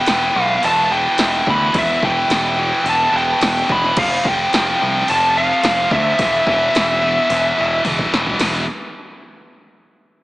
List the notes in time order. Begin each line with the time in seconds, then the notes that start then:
Already playing: G5
0.06 E1 E2 B2 E3, snare, open hi-hat
0.35 B1 E2 B2 E3
0.43 F5
0.62 E1 E2 B2 E3 A5, open hi-hat
0.89 E2 B2 E3 G5
1.18 E1 E2 B2 E3, snare, open hi-hat
1.46 D2 E2 B2 E3 B5, kick
1.73 E1 E2 B2 E3, kick, open hi-hat
1.78 E5
2.02 E1 E2 B2 E3 G5, kick
2.28 E1 E2 B2 E3, snare, open hi-hat
2.57 E2 B2 E3
2.84 E1 E2 B2 E3, open hi-hat
2.90 A5
3.12 E1 E2 B2 E3
3.17 G5
3.40 E1 E2 B2 E3, snare, open hi-hat
3.68 E1 E2 B2 E3 B5, kick
3.84 snare
3.96 F1 F2 C3 F3 F5, kick, crash
4.25 F1 F2 C3 F3 G5, kick
4.52 F1 F2 C3 F3, snare, open hi-hat
4.80 C2 F2 C3 F3
5.08 F1 F2 C3 F3 A5, open hi-hat
5.36 F2 C3 F3 F5
5.63 F1 F2 C3 F3, snare, open hi-hat
5.91 D2 F2 C3 F3 E5, kick
6.19 E1 E2 B2 E3, kick, open hi-hat
6.47 E1 E2 B2 E3, kick
6.75 E1 E2 B2 E3, snare, open hi-hat
7.02 E2 B2 E3
7.30 E1 E2 B2 E3, open hi-hat
7.56 E1 E2 B2 E3
7.84 E1 E2 B2 E3, open hi-hat, high tom
7.99 kick
8.12 E1 E2 B2 E3, snare
8.26 floor tom
8.39 E1 E2 B2 E3, snare, floor tom, open hi-hat